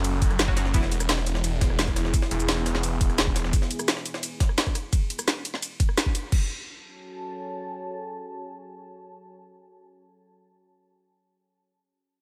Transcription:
0.00 0.20 F#1 loud
0.00 0.70 C#4 medium
0.00 0.70 F#4 medium
0.00 0.70 A4 loud
0.04 closed hi-hat medium
0.04 ride medium
0.04 shaker soft
0.22 0.38 F#1 loud
0.22 kick loud
0.22 closed hi-hat medium
0.22 ride medium
0.22 shaker soft
0.30 cross-stick soft
0.30 closed hi-hat soft
0.39 0.73 F#1 loud
0.39 snare loud
0.39 closed hi-hat medium
0.39 ride medium
0.39 shaker medium
0.48 0.55 F#3 medium
0.48 0.55 C#4 medium
0.48 0.55 F#4 medium
0.48 kick medium
0.57 0.65 F#3 medium
0.57 0.65 C#4 medium
0.57 0.65 F#4 medium
0.57 snare medium
0.57 closed hi-hat medium
0.57 ride medium
0.57 shaker soft
0.65 snare soft
0.74 2.12 E1 loud
0.74 0.83 E3 medium
0.74 0.83 B3 medium
0.74 4.89 B3 medium
0.74 0.83 E4 loud
0.74 4.89 E4 medium
0.74 4.89 G#4 loud
0.74 kick loud
0.74 closed hi-hat medium
0.74 ride medium
0.74 shaker medium
0.83 snare soft
0.91 closed hi-hat medium
0.91 ride medium
0.91 shaker soft
1.00 cross-stick medium
1.00 shaker medium
1.09 snare loud
1.09 closed hi-hat medium
1.09 open hi-hat medium
1.09 ride medium
1.09 shaker medium
1.18 snare medium
1.26 closed hi-hat medium
1.26 ride medium
1.26 shaker soft
1.35 snare medium
1.44 closed hi-hat medium
1.44 ride medium
1.44 shaker medium
1.61 kick loud
1.61 snare medium
1.61 closed hi-hat medium
1.61 ride medium
1.70 cross-stick soft
1.79 snare loud
1.79 closed hi-hat medium
1.79 ride medium
1.79 shaker medium
1.87 kick medium
1.87 cross-stick soft
1.87 closed hi-hat soft
1.96 cross-stick soft
1.96 snare soft
1.96 closed hi-hat medium
1.96 closed hi-hat loud
1.96 ride medium
1.96 shaker soft
2.05 snare soft
2.14 kick loud
2.14 closed hi-hat medium
2.14 ride medium
2.14 shaker medium
2.22 snare medium
2.31 3.17 E1 loud
2.31 closed hi-hat medium
2.31 ride medium
2.31 shaker soft
2.40 shaker medium
2.48 snare loud
2.48 closed hi-hat medium
2.48 ride medium
2.48 shaker soft
2.57 snare soft
2.66 snare medium
2.66 closed hi-hat medium
2.66 ride medium
2.66 shaker soft
2.75 snare medium
2.75 snare soft
2.83 closed hi-hat medium
2.83 ride medium
2.83 shaker medium
3.01 kick loud
3.01 closed hi-hat medium
3.01 closed hi-hat loud
3.01 ride medium
3.01 shaker soft
3.10 cross-stick soft
3.10 closed hi-hat soft
3.18 3.52 E1 loud
3.18 snare loud
3.18 closed hi-hat medium
3.18 ride medium
3.18 shaker medium
3.27 kick medium
3.36 snare medium
3.36 closed hi-hat medium
3.36 closed hi-hat loud
3.36 ride medium
3.36 shaker soft
3.44 snare soft
3.53 kick loud
3.53 closed hi-hat medium
3.53 ride medium
3.53 shaker medium
3.62 snare soft
3.71 closed hi-hat medium
3.71 ride medium
3.71 shaker soft
3.79 cross-stick medium
3.79 shaker medium
3.88 snare loud
3.88 closed hi-hat medium
3.88 open hi-hat medium
3.88 ride medium
3.88 shaker medium
3.97 snare medium
4.05 closed hi-hat medium
4.05 closed hi-hat loud
4.05 ride medium
4.05 shaker soft
4.14 snare medium
4.23 closed hi-hat medium
4.23 ride medium
4.23 shaker medium
4.40 kick loud
4.40 snare medium
4.40 closed hi-hat medium
4.40 closed hi-hat loud
4.40 ride medium
4.49 cross-stick soft
4.58 snare loud
4.58 closed hi-hat medium
4.58 ride medium
4.58 shaker medium
4.66 kick medium
4.66 cross-stick soft
4.66 closed hi-hat soft
4.75 cross-stick soft
4.75 closed hi-hat loud
4.75 ride medium
4.75 shaker soft
4.93 kick loud
4.93 closed hi-hat medium
4.93 ride medium
4.93 shaker medium
5.10 closed hi-hat loud
5.10 ride medium
5.10 shaker soft
5.19 cross-stick medium
5.19 shaker medium
5.28 snare loud
5.28 closed hi-hat medium
5.28 ride medium
5.28 shaker soft
5.45 closed hi-hat loud
5.45 ride medium
5.45 shaker soft
5.54 snare soft
5.62 closed hi-hat medium
5.62 ride medium
5.62 shaker medium
5.80 kick loud
5.80 closed hi-hat loud
5.80 ride medium
5.80 shaker soft
5.89 cross-stick soft
5.97 snare loud
5.97 closed hi-hat medium
5.97 ride medium
5.97 shaker medium
6.06 kick medium
6.15 closed hi-hat loud
6.15 ride medium
6.15 shaker soft
6.32 9.87 F#4 medium
6.32 9.87 C#5 medium
6.32 9.87 G#5 medium
6.32 9.87 A5 loud
6.32 kick loud
6.32 crash medium

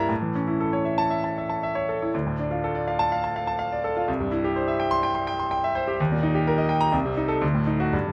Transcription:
0.00 0.12 G2 medium
0.00 0.12 G3 soft
0.00 0.12 A#3 medium
0.00 0.12 E4 medium
0.00 0.12 A#4 medium
0.00 0.12 E5 medium
0.00 0.12 A#5 medium
0.09 2.09 A2 medium
0.22 0.42 E3 soft
0.35 0.55 C#4 soft
0.48 0.68 E4 soft
0.60 0.81 A4 soft
0.73 0.93 C#5 medium
0.85 1.06 E5 soft
0.98 1.19 A5 medium
1.10 1.31 E5 medium
1.24 1.45 A5 soft
1.38 1.58 E5 soft
1.50 1.70 A5 soft
1.63 1.83 E5 medium
1.75 1.96 C#5 medium
1.89 2.09 A4 soft
2.02 2.14 E4 soft
2.14 4.04 D2 medium
2.27 2.46 A2 soft
2.39 2.58 D4 medium
2.51 2.70 F4 soft
2.64 2.83 A4 medium
2.75 2.94 D5 soft
2.88 3.07 F5 medium
2.99 3.19 A5 medium
3.12 3.31 F5 medium
3.24 3.43 A5 medium
3.36 3.55 F5 medium
3.47 3.67 A5 medium
3.59 3.79 F5 medium
3.72 3.91 D5 medium
3.84 4.03 A4 medium
3.97 4.08 F4 medium
4.08 5.95 C2 medium
4.20 4.39 G2 soft
4.32 4.51 E4 medium
4.44 4.63 G4 medium
4.56 4.75 C5 medium
4.68 4.87 E5 medium
4.80 4.99 G5 medium
4.91 5.10 C6 medium
5.03 5.23 G5 medium
5.15 5.34 C6 medium
5.27 5.47 G5 medium
5.39 5.59 C6 medium
5.51 5.71 G5 medium
5.64 5.83 E5 medium
5.75 5.95 C5 medium
5.88 6.00 G4 medium
6.00 6.91 D#2 medium
6.12 6.31 A#2 medium
6.23 6.42 D#4 medium
6.35 6.54 G4 medium
6.47 6.66 A#4 medium
6.58 6.77 D#5 medium
6.69 6.88 G5 medium
6.81 6.93 A#5 medium
6.92 7.40 C2 medium
7.05 7.25 C3 medium
7.17 7.37 D#4 medium
7.28 7.42 A4 medium
7.41 7.91 D2 medium
7.54 7.75 A2 medium
7.67 7.88 D#4 medium
7.80 7.93 F#4 medium
7.93 8.12 G2 medium
8.07 8.12 D3 soft

